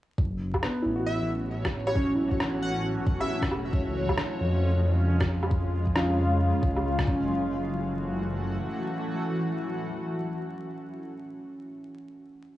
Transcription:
0.18 detuned saw bass F#1, ambient pad E3 A3 F#4, synth texture C#4 C#5, kick
0.54 kick, low woodblock
0.63 upright piano B3, cross-stick
0.82 detuned saw bass A1, upright piano E4
0.95 upright piano F#4
1.06 digital synth lead E5
1.21 detuned saw bass A1
1.65 kick, cross-stick, low woodblock
1.87 digital synth lead C#5, low woodblock
1.96 upright piano C#4, kick
2.15 upright piano E4
2.28 upright piano F#4, kick
2.40 cross-stick
2.62 detuned saw bass A1, digital synth lead F#5
3.06 kick
3.20 digital synth lead E5, low woodblock
3.42 kick, cross-stick
3.51 detuned saw bass E1, low woodblock
3.73 detuned saw bass C#2, ambient pad C#3 G#3 F4, kick
4.09 kick, low woodblock
4.18 cross-stick
4.41 detuned saw bass F2
4.76 detuned saw bass F2
5.20 kick, cross-stick, low woodblock
5.43 low woodblock
5.51 kick
5.87 kick
5.96 upright piano C#4 F4, cross-stick
6.18 detuned saw bass F2
6.63 detuned saw bass C#2, kick
6.76 low woodblock
6.99 kick, cross-stick
7.07 detuned saw bass F#1, ambient pad E3 A3 F#4, upright piano C#4, kick

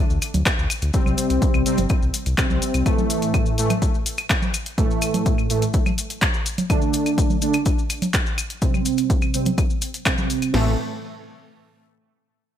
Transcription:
0.10 analog synth bass D2, maracas
0.22 open hi-hat, claves, maracas
0.34 analog synth bass D2, closed hi-hat, low conga, maracas
0.46 kick, clap, closed hi-hat, maracas
0.58 analog synth bass D2, maracas
0.70 open hi-hat, claves, maracas
0.82 analog synth bass D2, closed hi-hat, maracas
0.94 analog polysynth C3 G3 C4, kick, closed hi-hat, maracas
1.06 analog synth bass C2, low conga, claves, maracas
1.18 open hi-hat, maracas
1.30 analog synth bass C2, closed hi-hat, maracas
1.42 kick, closed hi-hat, maracas
1.54 analog synth bass C2, claves, maracas
1.66 analog polysynth C3 G3 C4, open hi-hat, maracas
1.78 analog synth bass G1, closed hi-hat, low conga, maracas
1.89 kick, closed hi-hat, claves, maracas
2.02 analog synth bass C2, maracas
2.14 open hi-hat, maracas
2.26 analog synth bass C2, closed hi-hat, maracas
2.38 analog polysynth C3 G3 C4, kick, clap, closed hi-hat, claves, maracas
2.50 analog synth bass C2, analog polysynth C3 G3 C4, low conga, maracas
2.62 open hi-hat, maracas
2.74 analog synth bass C2, closed hi-hat, claves, maracas
2.86 analog polysynth A2 E3 A3, kick, closed hi-hat, claves, maracas
2.98 low conga, maracas
3.10 open hi-hat, maracas
3.22 closed hi-hat, maracas
3.34 kick, closed hi-hat, claves, maracas
3.46 maracas
3.58 analog polysynth A2 E3 A3, open hi-hat, maracas
3.70 closed hi-hat, low conga, claves, maracas
3.82 kick, closed hi-hat, maracas
3.95 maracas
4.06 open hi-hat, maracas
4.18 closed hi-hat, claves, maracas
4.30 kick, clap, closed hi-hat, maracas
4.42 low conga, maracas
4.54 open hi-hat, claves, maracas
4.66 closed hi-hat, maracas
4.78 analog polysynth A2 E3 A3, kick, closed hi-hat, maracas
4.91 maracas
5.02 open hi-hat, claves, maracas
5.14 closed hi-hat, low conga, maracas
5.26 kick, closed hi-hat, maracas
5.38 claves, maracas
5.50 analog polysynth A2 E3 A3, open hi-hat, maracas
5.62 closed hi-hat, maracas
5.74 kick, closed hi-hat, maracas
5.86 low conga, claves, maracas
5.98 open hi-hat, maracas
6.10 closed hi-hat, maracas
6.22 kick, clap, closed hi-hat, claves, maracas
6.34 maracas
6.46 open hi-hat, maracas
6.58 closed hi-hat, low conga, maracas
6.70 analog polysynth D3 A3 D4, kick, closed hi-hat, claves, maracas
6.82 maracas
6.93 open hi-hat, maracas
7.06 closed hi-hat, claves, maracas
7.18 kick, closed hi-hat, maracas
7.30 low conga, maracas
7.42 analog polysynth D3 A3 D4, open hi-hat, maracas
7.53 closed hi-hat, claves, maracas
7.66 kick, closed hi-hat, maracas
7.79 maracas
7.90 open hi-hat, claves, maracas
8.02 closed hi-hat, low conga, maracas
8.14 kick, clap, closed hi-hat, maracas
8.26 maracas
8.38 open hi-hat, claves, maracas
8.50 closed hi-hat, maracas
8.62 analog polysynth C3 G3 C4, kick, closed hi-hat, maracas
8.74 low conga, claves, maracas
8.85 open hi-hat, maracas
8.98 closed hi-hat, maracas
9.10 kick, closed hi-hat, maracas
9.22 claves, maracas
9.34 analog polysynth C3 G3 C4, open hi-hat, maracas
9.46 closed hi-hat, low conga, maracas
9.58 kick, closed hi-hat, claves, maracas
9.70 maracas
9.82 open hi-hat, maracas
9.94 closed hi-hat, maracas
10.06 analog polysynth C3 G3 C4, kick, clap, closed hi-hat, claves, maracas
10.18 analog polysynth C3 G3 C4, low conga, maracas
10.30 open hi-hat, maracas
10.42 closed hi-hat, claves, maracas
10.54 analog synth bass A1, analog polysynth A2 E3 A3, snare, crash

